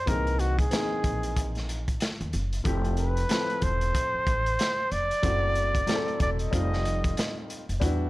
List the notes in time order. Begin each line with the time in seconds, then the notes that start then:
0.06 C2 E3 A#3 C4 D#4 G#4 A#4, kick, closed hi-hat
0.27 closed hi-hat
0.39 F#4, closed hi-hat
0.59 G#4, kick, closed hi-hat
0.70 E3 A#3 C4 D#4 G#4, snare, closed hi-hat
1.04 A#1, kick, closed hi-hat
1.23 closed hi-hat
1.36 kick, closed hi-hat
1.55 snare, closed hi-hat
1.69 closed hi-hat
1.88 kick, closed hi-hat
2.00 snare, closed hi-hat
2.21 D#2, closed hi-hat
2.33 F#1, closed hi-hat
2.53 closed hi-hat
2.64 F1 F3 A3 C4 E4 G4, kick, closed hi-hat
2.85 closed hi-hat
2.97 B4, closed hi-hat
3.17 closed hi-hat
3.28 F3 A3 C4 E4 A4, snare, closed hi-hat
3.50 closed hi-hat
3.62 E1 C5, kick, closed hi-hat
3.81 closed hi-hat
3.95 kick, closed hi-hat
4.14 muted upright bass stroke
4.27 A1, kick, closed hi-hat
4.46 closed hi-hat
4.59 snare, closed hi-hat
4.91 F1 D5, closed hi-hat
5.11 closed hi-hat
5.22 F#1 F#3 A3 C4 E4 F#4, kick, closed hi-hat
5.55 closed hi-hat
5.75 kick, closed hi-hat
5.87 F#3 A3 C4 E4 G#4, snare, closed hi-hat
5.96 A4
6.08 closed hi-hat
6.20 E1 D5, kick, closed hi-hat
6.39 D#5, closed hi-hat
6.51 F1 G3 A3 C4 D#4 F4, kick, closed hi-hat
6.73 snare
6.85 closed hi-hat
7.04 kick, closed hi-hat
7.17 snare, closed hi-hat
7.50 closed hi-hat
7.69 F1, closed hi-hat
7.80 E2 G3 B3 D4 E4 F#4, kick, closed hi-hat